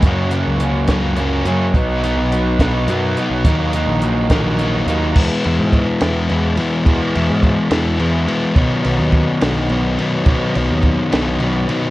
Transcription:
0.03 F#2 C#3 F#3 A#3 F#4, kick, closed hi-hat
0.07 C#4
0.31 A#3 C#4 F#4, closed hi-hat
0.35 F#3
0.47 C#2
0.60 F#3 A#3 C#4 F#4, closed hi-hat
0.88 C#2 F#3 A#3 C#4 F#4, kick, snare, closed hi-hat
0.92 F#2 C#3
1.17 C#3 F#3 A#3 C#4 F#4, closed hi-hat
1.45 F#2 A#3 C#4 F#4, closed hi-hat
1.50 F#3
1.73 B1 B2 F#3 B3 F#4 D#5 B5 D#6, kick, closed hi-hat
1.78 D#4
2.02 B3 D#4 F#4, closed hi-hat
2.06 F#3
2.16 B1
2.31 F#3 B3 D#4 F#4, closed hi-hat
2.59 B1 B2 F#3 B3 D#4 F#4, kick, snare, closed hi-hat
2.87 F#2 B2 F#3 F#4, closed hi-hat
2.91 B3 D#4
3.16 B3 D#4 F#4, closed hi-hat
3.20 F#3
3.30 B1
3.45 D#2 D#3 F#3 A#3 F#4 A#5, kick, closed hi-hat
3.49 D#4
3.73 D#3 A#3 D#4 F#4, closed hi-hat
3.78 F#3
3.87 A#1
4.01 D#3 A#3 D#4 F#4, closed hi-hat
4.29 A#1 F#3 A#3 D#4 F#4, kick, snare, closed hi-hat
4.34 D#3
4.59 D#3 F#3 A#3 D#4 F#4, closed hi-hat
4.87 D#2 D#3 A#3 D#4 F#4, closed hi-hat
4.91 F#3
5.16 E2 E3 G#3 B3 E4 F#4 B4 G#5 E6, kick, crash
5.44 E2 E3 G#3 B3 E4, ride
5.59 G#2
5.73 kick, ride
6.01 E2 E3 G#3 B3 E4, snare, ride
6.29 E2 E3 G#3 B3 E4, ride
6.57 E3 G#3 B3 E4, ride
6.85 E2 E3 G#3 B3 E4, kick, ride
7.15 E2 E3 G#3 B3 E4, ride
7.30 G#2
7.43 kick, ride
7.71 E2 E3 G#3 B3 E4, snare, ride
7.99 E2 E3 G#3 B3 E4, ride
8.27 E3 G#3 B3 E4, ride
8.54 B1 B2 D#3 F#3 B3 D#4 C#5 B5 D#6, kick, ride
8.84 B1 B2 D#3 F#3 B3 D#4, ride
8.99 D#2
9.12 kick, ride
9.41 B1 B2 D#3 F#3 B3 D#4, snare, ride
9.70 B1 B2 D#3 F#3 B3 D#4, ride
9.99 B2 D#3 F#3 B3 D#4, ride
10.26 B1 B2 D#3 F#3 B3 D#4, kick, ride
10.55 B1 B2 D#3 F#3 B3 D#4, ride
10.71 D#2
10.83 kick, ride
11.12 B1 B2 D#3 F#3 B3 D#4, snare, ride
11.40 B1 B2 D#3 F#3 B3 D#4, ride
11.68 B2 D#3 F#3 B3 D#4, ride

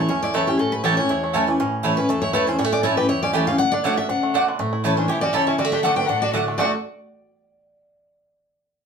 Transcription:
Already playing: E4
0.00 A3
0.08 E2 C#4 C#5
0.22 E4 D5
0.34 E3 A3 C#4 E4 B4 C#5 A5
0.47 C#4 E4 G4
0.59 A2 C#4 A4
0.72 B4
0.84 E3 A3 C#4 E4 G4 C#5 A5
0.97 C#4 E4 C#5
1.09 E2 E4
1.24 A3
1.33 E3 A3 C#4 E4 C#5 A5
1.47 E3 C#4 E4
1.60 A2 C#4
1.83 E3 A3 C#4 E4 C#5 A5
1.97 C#4 E4 B4
2.09 E2 A3 A4
2.22 E4 C#5
2.33 E3 A3 C#4 E4 B4 C#5 A5
2.47 C#4 E4 C5
2.58 A2 G3 C#5
2.64 A3
2.72 C#4 D5
2.83 E3 A3 C#4 E4 C#5 A5
2.97 C#4 E4 G4 B4
3.09 E2 E4 C#5
3.23 C#4 D5
3.33 E3 A3 C#4 E4 G4 C#5 E5 A5
3.47 C#4 E4 F5
3.58 D3 D4 F#5
3.72 D4 D5
3.84 D3 A3 D4 F#4 C#5 D5 F#5
3.97 D4 F#4 E5
4.09 C#3 D4 F#5
4.23 A3
4.34 B2 A3 D4 F#4 D5 F#5
4.48 D3
4.59 A2 A3
4.73 E4
4.84 E3 A3 C#4 E4 C#5 A5
4.97 C#4 D4 C5
5.08 B2 E4 G4 C#5
5.21 C#4 F#4 D5
5.33 C#3 A3 E4 A4 C#5 E5 A5
5.47 C#4 E4 C#5
5.58 D3 G3 F#4 D5
5.65 A3
5.72 D4 G4 E5
5.83 D3 A3 D4 F#4 A4 D5 F#5
5.96 D4 B4 G5
6.08 A2 D4 A4 F#5
6.22 D4 F#4 D5
6.33 D3 A3 D4 F#4 D5 F#5
6.48 A3
6.58 D3 A3 D4 F#4 D5 F#5
6.63 F#4 A4

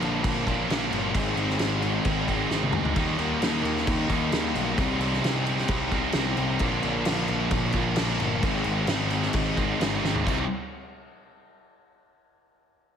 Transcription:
Already playing: A#2 D3 F3 A#3 D4
0.01 A#1 A#2 F3 A#3, crash
0.22 A#1 A#2 F3 A#3, kick, crash
0.45 A#1 A#2 D3 F3 A#3 D4, kick, crash
0.49 A#2
0.69 A#1 A#2 D3 F3 A#3 D4, snare, crash
0.91 G1 A#2 F3 A#3, crash
1.13 G#1 G#2 D#3 G#3 C4 D#4, kick, crash
1.35 G#1 G#2 D#3 G#3, crash
1.50 snare
1.58 G#1 G#2 D#3 G#3, snare, crash
1.82 G#2 D#3 G#3, crash
2.05 G#1 G#2 D#3 G#3, kick, crash
2.28 G#2 D#3 G#3 C4 D#4, kick, crash
2.49 G#1 G#2 D#3 G#3 C4 D#4, snare
2.62 high tom
2.72 D2 G#2 D#3 G#3, mid tom
2.85 floor tom
2.96 D#2 D#3 G3 A#3 D#4, kick, crash
3.18 D#2 D#3 A#3 D#4, crash
3.41 D#2 D#3 A#3 D#4, snare, crash
3.62 D#2 D#3 A#3 D#4, crash
3.77 snare
3.86 D#2 D#3 A#3 D#4, kick, crash
4.09 D#2 D#3 G3 A#3 D#4, kick, crash
4.30 D#2 D#3 G3 A#3 D#4, snare, crash
4.54 B1 D#3 A#3 D#4, crash
4.77 C2 C3 G3 C4 D#4, kick, crash
4.99 C2 C3 G3 C4, crash
5.13 snare
5.21 C2 C3 G3 C4, crash
5.25 snare
5.44 C3 G3 C4, crash
5.58 snare
5.68 C2 C3 G3 C4, kick, crash
5.92 C3 G3 C4 D#4, kick, crash
6.12 C2 C3 G3 D#4, snare, crash
6.17 C4
6.36 C2 C3 G3 C4, crash
6.59 A#1 A#2 D3 F3 A#3 D4, kick, crash
6.83 A#1 A#2 F3 A#3, crash
7.05 A#1 A#2 F3 A#3, snare, crash
7.28 A#1 A#2 F3 A#3, crash
7.51 A#1 A#2 F3 A#3, kick, crash
7.73 A#1 A#2 D3 F3 A#3 D4, kick, crash
7.96 A#1 A#2 D3 F3 D4, snare, crash
8.00 A#3
8.20 G1 A#2 F3 A#3, crash
8.43 G#1 G#2 D#3 G#3 C4 D#4, kick, crash
8.64 G#1 G#2 D#3 G#3, crash
8.87 G#1 G#2 D#3 G#3, snare, crash
9.11 G#2 D#3 G#3, crash
9.22 snare
9.33 G#1 G#2 D#3 G#3, kick, crash
9.56 G#2 D#3 G#3 C4 D#4, kick, crash
9.79 G#1 G#2 D#3 G#3 C4 D#4, snare, crash
10.02 G#1 G#2 D#3 G#3, snare
10.15 floor tom
10.25 C2 C3 G3 C4 D#4 G4, kick, crash

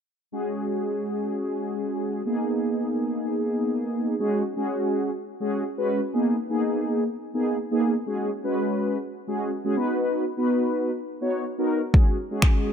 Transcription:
0.32 G#3 C#4 F#4 G#4
2.26 A#3 B3 D#4 G#4
4.19 G#3 C#4 F#4 G#4
4.57 G#3 C#4 F#4 G#4
5.40 G#3 C#4 F#4 G#4
5.77 G#3 C#4 F#4 B4
6.13 A#3 B3 D#4 G#4
6.50 A#3 B3 D#4 G#4
7.34 A#3 B3 D#4 G#4
7.71 A#3 B3 D#4 G#4
8.06 G#3 C#4 F#4 G#4
8.44 G#3 C#4 F#4 B4
9.27 G#3 C#4 F#4 G#4
9.64 G#3 C#4 F#4 G#4
9.76 B3 D#4 F#4 B4
10.37 B3 D#4 F#4 B4
11.21 B3 D#4 F#4 C#5
11.58 B3 D#4 F#4 A#4
11.94 G#3 C#4 F#4 G#4, kick
12.31 G#3 C#4 F#4 G#4
12.42 finger snap, kick

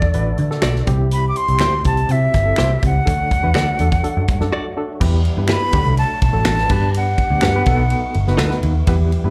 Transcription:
Already playing: A3 D4 F#4 A4 D5
0.02 kick
0.14 A1 D4 F#4 B4, closed hi-hat
0.38 D3, closed hi-hat
0.51 D4 F#4 A4, snare
0.62 B1 F#4 A4 D5, finger snap, snare, closed hi-hat
0.75 snare
0.86 C2 G3 C4 E4 G4, kick, closed hi-hat
1.11 B5, closed hi-hat
1.29 D6
1.36 C6, closed hi-hat
1.48 C2 C4 E4 G4, closed hi-hat
1.59 D2 E4 G4 C5, finger snap, snare, closed hi-hat
1.84 C2 C4 E4 G4 A5, kick, closed hi-hat
1.97 closed hi-hat
2.09 C3 C4 E4 F#4 E5, closed hi-hat
2.34 G1, kick, snare, closed hi-hat
2.45 C4 E4 A4
2.56 C2 E4 G4 C5, finger snap, snare, closed hi-hat
2.82 C#2 C4 E4 G4 F#5, kick, closed hi-hat
3.05 D2 F#3 A3 D4 F#4 A4, kick, closed hi-hat
3.31 kick, closed hi-hat
3.43 E2 D4 F#4 B4
3.54 D2 F#4 A4 D5, finger snap, snare, closed hi-hat
3.79 E2 D4 F#4 A4, closed hi-hat
3.92 kick, closed hi-hat
4.03 D4 F#4 A4, closed hi-hat
4.17 F#2
4.28 G2, kick, closed hi-hat
4.40 F#2 D4 F#4 A4, snare
4.52 F#4 A4 D5
4.77 D4 F#4 A4
5.00 E2 G3 B3 E4 G4 B4, kick, crash
5.25 ride
5.37 G2 B3 E4 G4 B4
5.48 E4 G4 B4 B5, finger snap, snare, ride
5.61 B3 E4 G4 B4
5.73 D2 F#3 A3 D4 F#4 G4, kick, ride
5.80 A4
5.85 C2
5.97 A5, ride
6.22 B1 A5, kick, ride
6.33 A1 A3 D4 F#4 A4
6.45 A1 D4 F#4 A4, finger snap, snare, ride
6.58 A3 D4 F#4 B4, snare
6.69 G2 G3 B3 D4 G4 B4, kick, crash
6.94 F#5, ride
7.18 kick, ride
7.30 D2 B3 D4 G4 D5
7.41 G2 D4 G4 B4, finger snap, snare, ride
7.55 B3 D4 G4 B4
7.66 B1 A3 B3 D#4 F#4 A4, kick, ride
7.90 ride
8.14 G1, ride
8.27 F#1 B3 D#4 F#4 B4, snare
8.37 D2 D#4 A4 B4, finger snap, snare, ride
8.50 B3 D#4 F#4 B4, snare
8.63 D#2, ride
8.86 E2 G3 B3 E4 G4 B4, kick, ride
9.12 ride
9.24 G2 B3 E4 G4 B4

